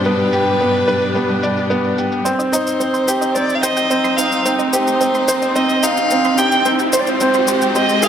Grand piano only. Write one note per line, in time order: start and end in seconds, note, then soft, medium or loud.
0.00 0.06 B3 medium
0.00 0.33 G4 medium
0.00 0.88 B4 medium
0.00 1.43 D5 medium
0.06 0.32 B3 medium
0.33 0.59 G4 medium
0.61 0.87 B3 medium
0.88 1.14 B4 medium
1.15 1.42 B3 medium
1.43 1.69 D5 medium
1.70 1.97 B3 medium
1.98 2.24 G4 medium
2.25 2.52 C4 medium
2.53 2.79 D#4 medium
2.81 3.07 C4 medium
3.08 3.34 G4 medium
3.36 3.62 C4 medium
3.63 3.89 C5 medium
3.90 4.17 C4 medium
4.18 4.44 D#4 medium
4.45 4.72 C4 medium
4.73 4.99 G4 medium
5.01 5.27 C4 medium
5.28 5.54 C5 medium
5.56 5.82 C4 medium
5.83 6.09 D#4 medium
6.11 6.37 C4 medium
6.38 6.64 G4 medium
6.65 6.92 C4 medium
6.93 7.19 C5 medium
7.21 7.47 C4 medium
7.48 7.74 G4 medium
7.75 8.02 C4 medium
8.03 8.09 G#4 medium